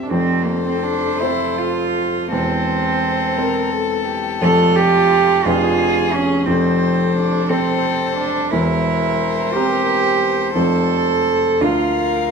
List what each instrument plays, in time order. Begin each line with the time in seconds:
Already playing: grand piano C4 G4 C5 G5 C6
0.03 cello D4
0.09 grand piano F1 F2, cello C4, violin A4 C5
0.45 cello A#3
0.67 cello C4
0.84 cello D4
1.21 grand piano C4 A4 C5, cello E4
1.58 cello F4
2.30 grand piano E1 E2, cello C4, violin A4 C5
3.37 grand piano C4 A#4 C5, violin A#4
3.71 violin A4
4.05 violin G4
4.41 grand piano F1 F2 C4 A4 C5, violin F4, cello A4
4.76 cello G4
5.45 grand piano F1 F2 D4 G#4 B4, cello F4, violin G#4
6.14 cello C#4
6.46 grand piano F1 F2, cello C4, violin A4 C5
7.13 cello D4
7.49 cello C4, grand piano C4 A4 C5, violin A4 C5
8.17 cello D4
8.51 grand piano E1 E2, cello E4, violin A#4 C5
9.53 grand piano C4 G4 A#4, cello G4
10.54 grand piano F1 F2 C4 F4 A4, cello A4, violin A4
11.60 grand piano D2 D3 D4 F4 A#4, cello F4, violin A#4 F5